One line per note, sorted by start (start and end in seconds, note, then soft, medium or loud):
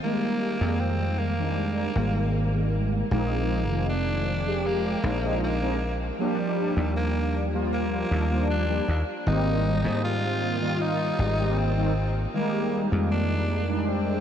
0.03 0.57 D#3 loud
0.03 0.57 G3 loud
0.03 0.57 G#3 loud
0.03 0.82 A#3 loud
0.03 0.57 A#3 loud
0.61 1.87 F2 loud
0.61 1.33 D#3 medium
0.61 1.34 G3 medium
0.61 1.34 G#3 medium
0.61 1.34 A#3 medium
0.80 1.20 C4 loud
1.19 2.73 A#3 loud
1.37 1.91 D#3 loud
1.37 1.91 G3 medium
1.37 1.92 G#3 medium
1.37 1.92 D4 loud
1.95 3.02 G#1 medium
1.95 2.49 D#3 medium
1.95 2.49 G3 medium
1.95 2.49 G#3 medium
1.95 2.50 A#3 medium
2.53 3.07 D#3 medium
2.53 3.07 G3 medium
2.53 3.07 G#3 medium
2.53 3.07 A#3 medium
3.10 3.69 A#1 medium
3.10 3.64 F3 loud
3.10 3.64 G#3 loud
3.10 3.85 A#3 medium
3.10 3.65 C4 medium
3.10 3.65 D#4 loud
3.68 4.94 F1 loud
3.68 4.42 D#3 medium
3.68 4.41 F3 medium
3.68 4.41 G#3 medium
3.68 4.42 C4 medium
3.89 4.68 D4 loud
4.46 4.99 F3 medium
4.46 4.99 G#3 medium
4.46 4.99 C4 medium
4.46 5.00 G4 loud
4.66 5.43 A#3 loud
5.03 6.10 A#1 medium
5.03 5.18 F3 medium
5.03 5.18 G#3 medium
5.03 5.19 C4 medium
5.03 5.19 D#4 medium
5.22 5.57 F3 medium
5.22 5.57 G#3 medium
5.22 5.57 C4 medium
5.22 5.57 D#4 loud
5.43 5.97 A#3 loud
5.61 5.76 F3 loud
5.61 5.76 G#3 medium
5.61 5.77 C4 medium
5.61 5.77 D#4 loud
6.19 6.72 F3 loud
6.19 6.72 G3 loud
6.19 6.93 G3 medium
6.19 6.73 A#3 loud
6.19 6.73 D4 loud
6.76 8.02 D#2 medium
6.76 7.49 F3 medium
6.76 7.49 G3 medium
6.76 7.49 A#3 medium
6.76 7.50 D4 medium
6.96 7.43 A#3 loud
7.53 8.07 F3 loud
7.53 8.07 G3 medium
7.53 8.07 A#3 medium
7.53 8.07 F4 loud
7.73 8.46 A#3 loud
8.10 8.79 D#2 medium
8.10 8.26 F3 medium
8.10 8.26 G3 medium
8.10 8.26 A#3 medium
8.10 8.27 D4 medium
8.30 8.64 F3 loud
8.30 8.64 G3 medium
8.30 8.65 A#3 medium
8.30 8.65 D4 loud
8.50 9.04 D4 loud
8.68 8.84 F3 loud
8.68 8.84 G3 medium
8.68 8.84 A#3 medium
8.68 8.84 D4 loud
8.88 9.02 D#2 medium
9.26 9.86 G#1 loud
9.26 9.79 D#3 loud
9.26 9.80 G3 loud
9.26 9.80 A#3 loud
9.26 9.80 C4 loud
9.26 10.00 D#4 loud
9.84 11.10 G#2 loud
9.84 10.56 D#3 medium
9.84 10.57 G3 medium
9.84 10.57 A#3 medium
9.84 10.57 C4 medium
10.04 10.83 F4 loud
10.60 11.14 D#3 medium
10.60 11.14 G3 medium
10.60 11.15 A#3 medium
10.60 11.15 F4 loud
10.81 11.59 D#4 loud
11.18 12.25 G#1 medium
11.18 11.33 D#3 medium
11.18 11.34 G3 medium
11.18 11.34 A#3 medium
11.18 11.34 C4 medium
11.37 11.72 D#3 loud
11.37 11.72 G3 medium
11.37 11.72 A#3 medium
11.37 11.73 C4 loud
11.58 12.16 C4 loud
11.76 11.91 D#3 loud
11.76 11.92 G3 medium
11.76 11.92 A#3 medium
11.76 11.92 C4 loud
12.33 12.87 D#3 loud
12.33 12.87 G3 loud
12.33 12.88 G#3 medium
12.33 12.81 A#3 loud
12.33 12.88 A#3 loud
12.91 14.17 F2 medium
12.91 13.64 D#3 medium
12.91 13.65 G3 medium
12.91 13.65 G#3 medium
12.91 13.65 A#3 medium
13.12 13.81 D4 loud
13.68 14.20 D#3 medium
13.68 14.20 G3 medium
13.68 14.20 G#3 medium
13.68 14.20 D4 loud
13.81 13.90 D4 medium
13.89 14.20 C4 loud